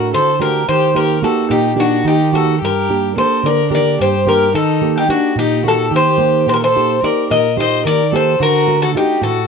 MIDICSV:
0, 0, Header, 1, 4, 480
1, 0, Start_track
1, 0, Tempo, 550459
1, 597, Time_signature, 7, 3, 24, 8
1, 8258, End_track
2, 0, Start_track
2, 0, Title_t, "Bouzouki"
2, 0, Program_c, 0, 25
2, 0, Note_on_c, 0, 70, 74
2, 92, Note_off_c, 0, 70, 0
2, 124, Note_on_c, 0, 72, 83
2, 344, Note_off_c, 0, 72, 0
2, 362, Note_on_c, 0, 70, 72
2, 583, Note_off_c, 0, 70, 0
2, 597, Note_on_c, 0, 72, 80
2, 836, Note_off_c, 0, 72, 0
2, 839, Note_on_c, 0, 70, 82
2, 1061, Note_off_c, 0, 70, 0
2, 1082, Note_on_c, 0, 69, 75
2, 1314, Note_on_c, 0, 67, 73
2, 1326, Note_off_c, 0, 69, 0
2, 1538, Note_off_c, 0, 67, 0
2, 1569, Note_on_c, 0, 66, 86
2, 1808, Note_off_c, 0, 66, 0
2, 1811, Note_on_c, 0, 67, 80
2, 2027, Note_off_c, 0, 67, 0
2, 2051, Note_on_c, 0, 69, 74
2, 2267, Note_off_c, 0, 69, 0
2, 2308, Note_on_c, 0, 70, 79
2, 2770, Note_off_c, 0, 70, 0
2, 2774, Note_on_c, 0, 72, 82
2, 2988, Note_off_c, 0, 72, 0
2, 3017, Note_on_c, 0, 74, 85
2, 3230, Note_off_c, 0, 74, 0
2, 3268, Note_on_c, 0, 74, 89
2, 3475, Note_off_c, 0, 74, 0
2, 3500, Note_on_c, 0, 72, 87
2, 3733, Note_off_c, 0, 72, 0
2, 3736, Note_on_c, 0, 70, 70
2, 3949, Note_off_c, 0, 70, 0
2, 3969, Note_on_c, 0, 69, 82
2, 4332, Note_off_c, 0, 69, 0
2, 4338, Note_on_c, 0, 67, 77
2, 4444, Note_off_c, 0, 67, 0
2, 4448, Note_on_c, 0, 66, 83
2, 4664, Note_off_c, 0, 66, 0
2, 4698, Note_on_c, 0, 67, 82
2, 4910, Note_off_c, 0, 67, 0
2, 4953, Note_on_c, 0, 69, 87
2, 5158, Note_off_c, 0, 69, 0
2, 5196, Note_on_c, 0, 72, 94
2, 5622, Note_off_c, 0, 72, 0
2, 5661, Note_on_c, 0, 72, 86
2, 5697, Note_off_c, 0, 72, 0
2, 5700, Note_on_c, 0, 70, 75
2, 5758, Note_off_c, 0, 70, 0
2, 5789, Note_on_c, 0, 72, 91
2, 6106, Note_off_c, 0, 72, 0
2, 6139, Note_on_c, 0, 74, 91
2, 6351, Note_off_c, 0, 74, 0
2, 6376, Note_on_c, 0, 75, 92
2, 6589, Note_off_c, 0, 75, 0
2, 6630, Note_on_c, 0, 75, 89
2, 6857, Note_off_c, 0, 75, 0
2, 6861, Note_on_c, 0, 74, 92
2, 7094, Note_off_c, 0, 74, 0
2, 7112, Note_on_c, 0, 72, 80
2, 7340, Note_off_c, 0, 72, 0
2, 7347, Note_on_c, 0, 70, 90
2, 7667, Note_off_c, 0, 70, 0
2, 7692, Note_on_c, 0, 69, 83
2, 7795, Note_off_c, 0, 69, 0
2, 7822, Note_on_c, 0, 67, 85
2, 8033, Note_off_c, 0, 67, 0
2, 8051, Note_on_c, 0, 69, 81
2, 8258, Note_off_c, 0, 69, 0
2, 8258, End_track
3, 0, Start_track
3, 0, Title_t, "Violin"
3, 0, Program_c, 1, 40
3, 0, Note_on_c, 1, 66, 71
3, 102, Note_off_c, 1, 66, 0
3, 122, Note_on_c, 1, 69, 66
3, 343, Note_off_c, 1, 69, 0
3, 364, Note_on_c, 1, 67, 61
3, 584, Note_off_c, 1, 67, 0
3, 610, Note_on_c, 1, 67, 74
3, 827, Note_off_c, 1, 67, 0
3, 843, Note_on_c, 1, 67, 71
3, 1063, Note_off_c, 1, 67, 0
3, 1078, Note_on_c, 1, 66, 60
3, 1301, Note_off_c, 1, 66, 0
3, 1313, Note_on_c, 1, 63, 70
3, 1538, Note_off_c, 1, 63, 0
3, 1544, Note_on_c, 1, 62, 65
3, 1773, Note_off_c, 1, 62, 0
3, 1798, Note_on_c, 1, 63, 68
3, 2020, Note_off_c, 1, 63, 0
3, 2045, Note_on_c, 1, 66, 71
3, 2264, Note_off_c, 1, 66, 0
3, 2282, Note_on_c, 1, 67, 68
3, 2725, Note_off_c, 1, 67, 0
3, 2775, Note_on_c, 1, 69, 67
3, 2988, Note_off_c, 1, 69, 0
3, 3003, Note_on_c, 1, 70, 81
3, 3222, Note_off_c, 1, 70, 0
3, 3245, Note_on_c, 1, 70, 71
3, 3463, Note_off_c, 1, 70, 0
3, 3500, Note_on_c, 1, 67, 71
3, 3711, Note_off_c, 1, 67, 0
3, 3729, Note_on_c, 1, 67, 70
3, 3945, Note_off_c, 1, 67, 0
3, 3978, Note_on_c, 1, 63, 67
3, 4302, Note_off_c, 1, 63, 0
3, 4349, Note_on_c, 1, 63, 64
3, 4444, Note_off_c, 1, 63, 0
3, 4462, Note_on_c, 1, 62, 62
3, 4672, Note_off_c, 1, 62, 0
3, 4698, Note_on_c, 1, 63, 75
3, 4910, Note_off_c, 1, 63, 0
3, 4934, Note_on_c, 1, 66, 66
3, 5147, Note_off_c, 1, 66, 0
3, 5160, Note_on_c, 1, 67, 78
3, 5603, Note_off_c, 1, 67, 0
3, 5646, Note_on_c, 1, 67, 73
3, 5676, Note_off_c, 1, 67, 0
3, 5682, Note_on_c, 1, 67, 65
3, 5744, Note_off_c, 1, 67, 0
3, 5767, Note_on_c, 1, 69, 79
3, 6094, Note_off_c, 1, 69, 0
3, 6131, Note_on_c, 1, 70, 69
3, 6346, Note_off_c, 1, 70, 0
3, 6371, Note_on_c, 1, 70, 80
3, 6586, Note_off_c, 1, 70, 0
3, 6621, Note_on_c, 1, 72, 84
3, 6832, Note_off_c, 1, 72, 0
3, 6857, Note_on_c, 1, 70, 80
3, 7070, Note_off_c, 1, 70, 0
3, 7092, Note_on_c, 1, 69, 71
3, 7307, Note_off_c, 1, 69, 0
3, 7342, Note_on_c, 1, 66, 79
3, 7664, Note_off_c, 1, 66, 0
3, 7700, Note_on_c, 1, 66, 68
3, 7800, Note_off_c, 1, 66, 0
3, 7821, Note_on_c, 1, 63, 63
3, 8032, Note_off_c, 1, 63, 0
3, 8059, Note_on_c, 1, 66, 72
3, 8258, Note_off_c, 1, 66, 0
3, 8258, End_track
4, 0, Start_track
4, 0, Title_t, "Nylon-string guitar"
4, 0, Program_c, 2, 24
4, 0, Note_on_c, 2, 45, 70
4, 0, Note_on_c, 2, 57, 47
4, 0, Note_on_c, 2, 62, 44
4, 0, Note_on_c, 2, 66, 53
4, 102, Note_off_c, 2, 45, 0
4, 124, Note_on_c, 2, 50, 66
4, 259, Note_off_c, 2, 57, 0
4, 259, Note_off_c, 2, 62, 0
4, 267, Note_off_c, 2, 66, 0
4, 346, Note_on_c, 2, 62, 47
4, 351, Note_on_c, 2, 57, 47
4, 355, Note_on_c, 2, 66, 57
4, 542, Note_off_c, 2, 62, 0
4, 546, Note_off_c, 2, 57, 0
4, 548, Note_off_c, 2, 66, 0
4, 586, Note_off_c, 2, 50, 0
4, 598, Note_on_c, 2, 51, 60
4, 825, Note_on_c, 2, 58, 44
4, 828, Note_on_c, 2, 63, 42
4, 832, Note_on_c, 2, 67, 48
4, 1055, Note_off_c, 2, 58, 0
4, 1063, Note_off_c, 2, 51, 0
4, 1063, Note_off_c, 2, 63, 0
4, 1065, Note_on_c, 2, 58, 51
4, 1068, Note_off_c, 2, 67, 0
4, 1073, Note_on_c, 2, 63, 43
4, 1078, Note_on_c, 2, 67, 52
4, 1308, Note_on_c, 2, 46, 63
4, 1453, Note_off_c, 2, 58, 0
4, 1458, Note_off_c, 2, 63, 0
4, 1461, Note_off_c, 2, 67, 0
4, 1531, Note_on_c, 2, 58, 51
4, 1536, Note_on_c, 2, 63, 42
4, 1542, Note_on_c, 2, 67, 57
4, 1777, Note_off_c, 2, 46, 0
4, 1784, Note_on_c, 2, 51, 70
4, 1925, Note_off_c, 2, 58, 0
4, 1928, Note_off_c, 2, 63, 0
4, 1930, Note_off_c, 2, 67, 0
4, 2027, Note_on_c, 2, 58, 50
4, 2034, Note_on_c, 2, 63, 46
4, 2038, Note_on_c, 2, 67, 56
4, 2224, Note_off_c, 2, 58, 0
4, 2226, Note_off_c, 2, 63, 0
4, 2226, Note_off_c, 2, 67, 0
4, 2255, Note_off_c, 2, 51, 0
4, 2280, Note_on_c, 2, 43, 62
4, 2524, Note_on_c, 2, 58, 45
4, 2527, Note_on_c, 2, 62, 43
4, 2534, Note_on_c, 2, 67, 48
4, 2743, Note_off_c, 2, 43, 0
4, 2750, Note_off_c, 2, 58, 0
4, 2756, Note_off_c, 2, 67, 0
4, 2758, Note_off_c, 2, 62, 0
4, 2761, Note_on_c, 2, 58, 48
4, 2768, Note_on_c, 2, 62, 42
4, 2769, Note_on_c, 2, 67, 51
4, 2995, Note_on_c, 2, 50, 68
4, 3142, Note_off_c, 2, 58, 0
4, 3146, Note_off_c, 2, 67, 0
4, 3147, Note_off_c, 2, 62, 0
4, 3225, Note_on_c, 2, 58, 45
4, 3228, Note_on_c, 2, 62, 46
4, 3236, Note_on_c, 2, 67, 56
4, 3460, Note_off_c, 2, 50, 0
4, 3488, Note_on_c, 2, 43, 65
4, 3613, Note_off_c, 2, 58, 0
4, 3614, Note_off_c, 2, 62, 0
4, 3619, Note_off_c, 2, 67, 0
4, 3707, Note_on_c, 2, 58, 47
4, 3721, Note_on_c, 2, 62, 40
4, 3722, Note_on_c, 2, 67, 53
4, 3901, Note_off_c, 2, 58, 0
4, 3910, Note_off_c, 2, 62, 0
4, 3910, Note_off_c, 2, 67, 0
4, 3946, Note_off_c, 2, 43, 0
4, 3963, Note_on_c, 2, 51, 70
4, 4200, Note_on_c, 2, 58, 49
4, 4200, Note_on_c, 2, 63, 39
4, 4206, Note_on_c, 2, 67, 49
4, 4424, Note_off_c, 2, 51, 0
4, 4424, Note_off_c, 2, 58, 0
4, 4427, Note_off_c, 2, 63, 0
4, 4428, Note_off_c, 2, 67, 0
4, 4435, Note_on_c, 2, 58, 43
4, 4438, Note_on_c, 2, 63, 43
4, 4439, Note_on_c, 2, 67, 50
4, 4672, Note_on_c, 2, 46, 62
4, 4818, Note_off_c, 2, 58, 0
4, 4820, Note_off_c, 2, 63, 0
4, 4821, Note_off_c, 2, 67, 0
4, 4917, Note_on_c, 2, 58, 43
4, 4923, Note_on_c, 2, 63, 44
4, 4929, Note_on_c, 2, 67, 56
4, 5138, Note_off_c, 2, 46, 0
4, 5155, Note_on_c, 2, 51, 60
4, 5300, Note_off_c, 2, 58, 0
4, 5302, Note_off_c, 2, 63, 0
4, 5306, Note_off_c, 2, 67, 0
4, 5387, Note_on_c, 2, 58, 47
4, 5392, Note_on_c, 2, 63, 43
4, 5396, Note_on_c, 2, 67, 51
4, 5620, Note_off_c, 2, 51, 0
4, 5637, Note_on_c, 2, 46, 58
4, 5773, Note_off_c, 2, 58, 0
4, 5776, Note_off_c, 2, 63, 0
4, 5779, Note_off_c, 2, 67, 0
4, 5893, Note_on_c, 2, 58, 49
4, 5895, Note_on_c, 2, 63, 39
4, 5899, Note_on_c, 2, 67, 49
4, 6101, Note_off_c, 2, 46, 0
4, 6114, Note_off_c, 2, 58, 0
4, 6124, Note_off_c, 2, 63, 0
4, 6124, Note_on_c, 2, 58, 42
4, 6126, Note_off_c, 2, 67, 0
4, 6134, Note_on_c, 2, 63, 45
4, 6137, Note_on_c, 2, 67, 52
4, 6370, Note_on_c, 2, 46, 65
4, 6504, Note_off_c, 2, 58, 0
4, 6510, Note_off_c, 2, 63, 0
4, 6511, Note_off_c, 2, 67, 0
4, 6597, Note_on_c, 2, 58, 50
4, 6603, Note_on_c, 2, 63, 40
4, 6603, Note_on_c, 2, 67, 54
4, 6828, Note_off_c, 2, 46, 0
4, 6846, Note_on_c, 2, 51, 64
4, 6981, Note_off_c, 2, 58, 0
4, 6982, Note_off_c, 2, 67, 0
4, 6983, Note_off_c, 2, 63, 0
4, 7084, Note_on_c, 2, 58, 45
4, 7089, Note_on_c, 2, 63, 45
4, 7093, Note_on_c, 2, 67, 58
4, 7272, Note_off_c, 2, 58, 0
4, 7275, Note_off_c, 2, 63, 0
4, 7277, Note_off_c, 2, 67, 0
4, 7306, Note_off_c, 2, 51, 0
4, 7324, Note_on_c, 2, 50, 64
4, 7562, Note_on_c, 2, 57, 45
4, 7566, Note_on_c, 2, 62, 44
4, 7570, Note_on_c, 2, 66, 50
4, 7785, Note_off_c, 2, 50, 0
4, 7792, Note_off_c, 2, 62, 0
4, 7793, Note_off_c, 2, 57, 0
4, 7794, Note_off_c, 2, 66, 0
4, 7802, Note_on_c, 2, 57, 49
4, 7804, Note_on_c, 2, 62, 38
4, 7809, Note_on_c, 2, 66, 49
4, 8034, Note_on_c, 2, 45, 62
4, 8184, Note_off_c, 2, 62, 0
4, 8185, Note_off_c, 2, 57, 0
4, 8185, Note_off_c, 2, 66, 0
4, 8258, Note_off_c, 2, 45, 0
4, 8258, End_track
0, 0, End_of_file